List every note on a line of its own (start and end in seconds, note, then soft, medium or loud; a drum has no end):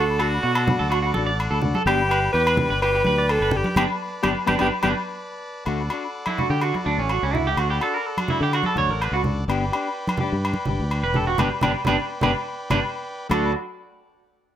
0.00 0.38 D2 loud
0.00 0.22 A4 loud
0.00 1.83 A4 medium
0.00 1.82 D5 medium
0.00 1.82 F#5 medium
0.19 0.35 D4 soft
0.19 0.34 F#4 medium
0.19 0.92 F#4 medium
0.19 0.27 A4 medium
0.19 low agogo medium
0.43 0.75 B2 medium
0.43 0.51 F#4 medium
0.55 0.63 A4 medium
0.55 low agogo medium
0.67 0.83 D4 medium
0.67 0.82 F#4 medium
0.67 high conga medium
0.67 low conga medium
0.79 1.11 D2 medium
0.79 0.86 A4 medium
0.90 0.98 F#4 medium
0.90 low agogo medium
1.02 1.10 F#4 medium
1.14 1.47 A1 medium
1.14 1.29 F#4 medium
1.14 1.22 A4 medium
1.14 high conga medium
1.18 1.31 D4 medium
1.26 1.34 D5 medium
1.40 low agogo medium
1.51 1.71 D2 medium
1.51 1.58 A4 medium
1.62 1.78 D4 medium
1.62 1.77 F#4 medium
1.62 low conga medium
1.75 1.82 A4 medium
1.75 high conga medium
1.86 2.28 G1 loud
1.86 2.01 B3 medium
1.86 2.02 D4 medium
1.86 2.31 G4 loud
1.86 1.94 G4 medium
1.86 2.02 G4 loud
1.86 5.64 B4 medium
1.86 5.64 D5 medium
1.86 3.75 G5 medium
1.86 low agogo medium
2.09 2.24 G4 medium
2.09 2.18 B4 medium
2.09 muted clean electric guitar stroke medium
2.09 low agogo medium
2.33 2.65 E2 loud
2.33 2.42 G4 loud
2.33 2.78 B4 loud
2.47 2.54 B4 medium
2.47 low agogo medium
2.56 2.73 D4 medium
2.56 2.71 G4 medium
2.56 high conga medium
2.56 low conga medium
2.70 3.01 G1 medium
2.70 2.77 B4 medium
2.82 2.90 G4 medium
2.82 3.32 B4 loud
2.82 low agogo medium
2.95 3.02 G4 medium
3.05 3.37 D2 medium
3.05 3.20 G4 medium
3.05 3.14 B4 medium
3.05 high conga medium
3.09 muted clean electric guitar stroke medium
3.18 3.25 D5 medium
3.29 3.58 A4 loud
3.29 low agogo medium
3.41 3.62 G1 medium
3.41 3.49 B4 medium
3.51 3.67 G4 medium
3.51 low conga medium
3.55 3.69 D4 soft
3.55 3.77 G4 medium
3.64 muted clean electric guitar stroke medium
3.64 high conga medium
3.76 3.85 G1 loud
3.76 3.84 B3 loud
3.76 3.84 D4 loud
3.76 3.85 D4 loud
3.76 3.85 G4 loud
3.76 3.83 G4 loud
3.76 3.84 G4 loud
3.76 3.85 B4 loud
3.76 5.66 A5 medium
3.76 high conga loud
3.76 low agogo loud
4.23 4.33 G1 medium
4.23 4.31 B3 loud
4.23 4.31 D4 medium
4.23 4.32 D4 medium
4.23 4.31 G4 loud
4.23 4.29 G4 loud
4.23 4.32 G4 loud
4.23 4.32 B4 medium
4.23 high conga loud
4.23 low agogo loud
4.46 4.57 G1 loud
4.46 4.55 B3 loud
4.46 4.55 D4 loud
4.46 4.56 D4 loud
4.46 4.55 G4 loud
4.46 4.54 G4 loud
4.46 4.56 G4 medium
4.46 4.56 B4 medium
4.46 high conga loud
4.46 low agogo loud
4.59 4.69 G1 medium
4.59 4.67 B3 loud
4.59 4.67 D4 loud
4.59 4.68 D4 loud
4.59 4.67 G4 loud
4.59 4.68 G4 loud
4.59 4.68 B4 loud
4.59 high conga loud
4.59 low agogo medium
4.83 4.93 G1 loud
4.83 4.91 B3 medium
4.83 4.91 D4 medium
4.83 4.92 D4 medium
4.83 4.89 G4 loud
4.83 4.91 G4 medium
4.83 4.92 G4 loud
4.83 4.92 B4 loud
4.83 high conga loud
4.83 low agogo medium
5.65 5.88 D2 loud
5.65 5.81 A3 medium
5.65 5.82 F#4 loud
5.65 9.45 A4 medium
5.65 9.45 D5 medium
5.65 9.44 F#5 medium
5.65 muted clean electric guitar stroke medium
5.65 low agogo medium
5.90 6.07 D4 soft
5.90 6.05 F#4 medium
5.90 low agogo medium
6.26 6.38 E4 medium
6.26 high conga medium
6.26 low agogo medium
6.38 6.55 D4 soft
6.38 6.53 F#4 medium
6.38 6.50 F#4 medium
6.38 low conga medium
6.50 6.71 D3 medium
6.50 6.62 G4 medium
6.61 6.74 F#4 medium
6.61 low agogo medium
6.74 muted clean electric guitar stroke medium
6.74 high conga medium
6.85 6.97 D2 medium
6.85 6.98 D4 medium
6.85 7.01 D4 soft
6.85 7.00 F#4 medium
6.98 7.19 A1 medium
6.98 7.10 C#4 medium
7.09 7.22 F#4 medium
7.09 low agogo medium
7.23 7.54 C#2 medium
7.23 7.35 C#4 medium
7.33 7.50 D4 soft
7.33 7.46 E4 medium
7.33 7.48 F#4 medium
7.33 low conga medium
7.47 7.59 G4 loud
7.57 7.78 D2 loud
7.57 7.70 F#4 medium
7.57 low agogo medium
7.70 7.82 G4 medium
7.81 7.98 D4 soft
7.81 7.96 F#4 medium
7.81 7.95 A4 medium
7.81 low agogo medium
7.95 8.06 A#4 medium
8.06 8.19 A4 medium
8.17 8.30 F#4 medium
8.17 high conga medium
8.17 low agogo medium
8.28 8.45 D4 medium
8.28 8.42 E4 medium
8.28 8.43 F#4 medium
8.28 low conga medium
8.41 8.62 D3 medium
8.41 8.54 G4 medium
8.53 8.66 F#4 medium
8.53 low agogo medium
8.63 8.78 A4 medium
8.63 high conga medium
8.75 8.87 D2 medium
8.75 8.92 D4 soft
8.75 8.91 F#4 medium
8.75 8.91 C#5 loud
8.75 low conga medium
8.88 9.09 A1 medium
8.88 9.01 A#4 medium
9.01 9.13 B4 medium
9.01 low agogo medium
9.12 9.44 C#2 medium
9.12 9.21 F#4 medium
9.24 9.41 D4 soft
9.24 9.39 F#4 medium
9.24 low conga medium
9.48 9.69 G1 loud
9.48 9.63 B3 medium
9.48 9.64 D4 medium
9.48 9.64 G4 medium
9.48 13.28 B4 medium
9.48 13.27 D5 medium
9.48 13.27 G5 medium
9.48 low agogo medium
9.72 9.89 D4 medium
9.72 9.87 G4 medium
9.72 low agogo medium
10.07 high conga medium
10.07 low agogo medium
10.18 10.35 G4 medium
10.18 low conga medium
10.23 10.36 D4 medium
10.32 10.54 G2 medium
10.45 low agogo medium
10.54 high conga medium
10.65 10.78 G1 medium
10.65 10.83 G4 medium
10.65 low conga medium
10.71 10.84 D4 medium
10.80 11.01 D2 medium
10.91 low agogo medium
11.03 11.35 E1 medium
11.03 11.16 B4 medium
11.14 11.30 G4 soft
11.14 11.27 A4 medium
11.14 low conga medium
11.18 11.32 D4 soft
11.27 11.39 F#4 medium
11.38 11.49 G1 loud
11.38 11.48 B3 medium
11.38 11.48 D4 medium
11.38 11.48 D4 loud
11.38 11.48 G4 loud
11.38 11.47 B4 medium
11.38 low conga medium
11.38 low agogo loud
11.61 11.73 G1 loud
11.61 11.71 B3 medium
11.61 11.71 D4 loud
11.61 11.71 D4 medium
11.61 11.71 G4 loud
11.61 11.71 G4 medium
11.61 11.71 B4 loud
11.61 low conga medium
11.61 low agogo loud
11.85 11.97 G1 medium
11.85 11.96 B3 medium
11.85 11.96 D4 loud
11.85 11.96 G4 loud
11.85 11.96 G4 medium
11.85 11.95 B4 medium
11.85 low conga loud
11.85 low agogo loud
12.21 12.33 G1 loud
12.21 12.31 B3 loud
12.21 12.31 D4 loud
12.21 12.31 D4 medium
12.21 12.31 G4 loud
12.21 12.31 G4 medium
12.21 12.31 B4 loud
12.21 low conga loud
12.21 low agogo medium
12.70 12.81 G1 medium
12.70 12.79 B3 medium
12.70 12.79 D4 loud
12.70 12.79 D4 medium
12.70 12.79 G4 medium
12.70 12.79 B4 loud
12.70 low conga loud
12.70 low agogo loud
13.29 13.53 D2 loud
13.29 13.50 A3 medium
13.29 13.50 D4 medium
13.29 13.54 F#4 medium
13.29 13.51 F#4 loud
13.29 13.53 A4 medium
13.29 13.54 A4 medium
13.29 13.53 D5 medium
13.29 13.54 D5 medium
13.29 13.53 F#5 medium
13.29 high conga medium
13.29 low agogo loud